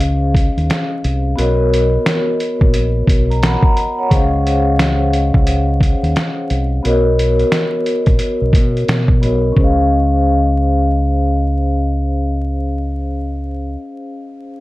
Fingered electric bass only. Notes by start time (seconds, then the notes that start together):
Already playing: C#2
0.57 D#2
1.04 C2
1.38 B1
2.61 A#1
3.08 B1
4.11 C#2
5.35 C#2
6.03 D#2
6.50 C2
6.85 B1
8.07 A#1
8.42 B1
8.53 B2
8.88 B2
9.23 B1
9.57 C#2